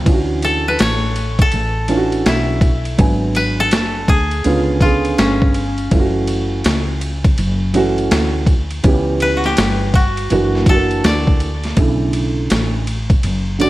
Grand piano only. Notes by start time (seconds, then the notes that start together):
0.05 E3 C#4 D4 F4
0.14 F#4
1.88 E3 C#4 D4 F4
1.97 F#4
2.98 F#3 B3 D4 G#5
4.44 D3 B3 C#4 F4
4.81 D3 B3 C#4 G#4
5.91 E3 A3 C#4 F4
6.00 F#4
7.73 E3 A3 C#4 F#4
8.83 E3 B3 C#4 G4
10.30 E3 A#3 D4 F#4
10.67 E3 A3 D4 F#4
10.74 A#3
11.76 C#3 D3 A3 E4
13.59 D3 A3 C#4 F#4